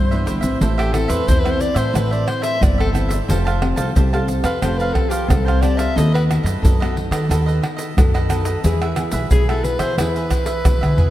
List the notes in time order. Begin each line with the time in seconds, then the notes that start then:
Already playing: G2 C5
0.11 E3 B3 D4 B4 C5 E5, pandeiro, shaker
0.25 G1 G4 B4 C5 E5, pandeiro, shaker
0.41 A1 E3 C4 E4 B4 C5 E5, pandeiro, shaker, surdo
0.61 A1 A2 E4 A4 C5 E5, pandeiro, shaker, surdo
0.78 G4 A4 C5 E5, pandeiro, tamborim, shaker
0.93 E3 C4 E4 A4, pandeiro, tamborim, shaker
1.08 E2 A4 B4 C5 E5, pandeiro, shaker
1.27 E2 E3 C4 E4 A4 C5 E5, pandeiro, shaker, surdo
1.39 B4
1.44 E3 C4 E4 A4 C5 E5, pandeiro, tamborim, shaker
1.50 C5
1.59 D5, muted cavaquinho stroke, pandeiro, shaker
1.74 A2 A4 C5 E5, pandeiro, tamborim, shaker
1.93 A1 A2 E3 C4 E4 A4 B4 C5 E5, pandeiro, tamborim, shaker, surdo
2.11 A4 C5 D5 E5, pandeiro, shaker
2.27 C5, muted cavaquinho stroke, pandeiro, tamborim
2.42 A4 C5 E5, pandeiro, shaker
2.61 G1 E3 C4 E4 D5, pandeiro, tamborim, shaker, surdo
2.78 A4 C5 E5, pandeiro, tamborim, shaker
2.92 E3 C4 E4 A4 C5 E5, pandeiro, tamborim, shaker
3.09 A4 C5 E5, pandeiro, shaker
3.28 F1 F3 C4 G4 A4 C5 F5 A5, pandeiro, shaker, surdo
3.45 C5 F5 A5, pandeiro, tamborim, shaker
3.62 C4 G4 A4, pandeiro, tamborim
3.76 C2 C5 F5 A5, pandeiro, shaker
3.95 C2 C3 C4 G4 A4 C5 F5 A5, pandeiro, shaker, surdo
4.13 C4 G4 A4 C5 F5 A5, pandeiro, tamborim, shaker
4.28 muted cavaquinho stroke, pandeiro, shaker
4.44 F2 B4 C5 F5 A5, pandeiro, tamborim, shaker
4.62 F1 F3 C4 G4 A4 C5 F5 A5, pandeiro, tamborim, shaker, surdo
4.78 B4 C5 F5 A5, pandeiro, shaker
4.93 A4, muted cavaquinho stroke, pandeiro, tamborim, surdo
5.09 G4 C5 F5 A5, pandeiro, shaker
5.28 C2 C3 C4 G4 A4, pandeiro, tamborim, shaker, surdo
5.45 C5 F5 A5, pandeiro, tamborim, shaker
5.61 C4 G4 A4 C5 D5 F5 A5, pandeiro, tamborim, shaker
5.77 C5 E5 F5 A5, pandeiro, shaker
5.96 D#2 D#3 B3 D#4 F#4 A4 B4 D#5, pandeiro, shaker, surdo
6.12 A4 B4 D#5, pandeiro, tamborim, shaker
6.29 B3 F#4 A4, pandeiro, tamborim, shaker
6.43 F#2 A4 B4 D#5, pandeiro, shaker
6.62 F#2 D#3 D#4 A4 B4 D#5, pandeiro, shaker, surdo
6.80 B3 F#4 A4 B4 D#5, pandeiro, tamborim, shaker
6.96 muted cavaquinho stroke, pandeiro
7.11 D#3 A4 B4 D#5, pandeiro, tamborim, shaker
7.29 D#2 D#3 B3 D#4 F#4 A4 B4 D#5, pandeiro, tamborim, shaker, surdo
7.46 A4 B4 D#5, pandeiro, shaker
7.62 muted cavaquinho stroke, pandeiro, tamborim
7.77 A4 B4 D#5, pandeiro, shaker
7.97 F#2 D#3 B3 F#4 A4, pandeiro, tamborim, shaker, surdo
8.14 A4 B4 D#5, pandeiro, tamborim, shaker
8.29 B3 D#4 F#4 A4 B4 D#5, pandeiro, tamborim, shaker
8.45 A4 B4 D#5, pandeiro, shaker
8.64 E2 E3 B3 E4 G#4 B4 E5, pandeiro, shaker, surdo
8.82 G#4 B4 E5, pandeiro, tamborim, shaker
8.96 B3 E4 G#4, pandeiro, tamborim, shaker
9.12 B1 G#4 B4 E5, pandeiro, shaker
9.31 B1 B2 B3 E4 G#4 B4 E5, pandeiro, shaker, surdo
9.49 B3 E4 G#4 A4 B4 E5, pandeiro, tamborim, shaker
9.64 B4, muted cavaquinho stroke, pandeiro, shaker
9.79 E3 G#4 B4 C5 E5, pandeiro, tamborim, shaker
9.98 E2 E3 B3 E4 G#4 B4 E5, pandeiro, tamborim, shaker, surdo
10.16 G#4 B4 E5, pandeiro, shaker
10.31 muted cavaquinho stroke, pandeiro, tamborim, shaker, surdo
10.46 G#4 B4 E5, pandeiro, shaker
10.65 B2 E3 B3 E4 G#4, pandeiro, tamborim, shaker, surdo
10.81 D3 G#4 B4 E5, pandeiro, tamborim, shaker
10.97 B2 B3 E4 G#4 B4 E5, surdo, pandeiro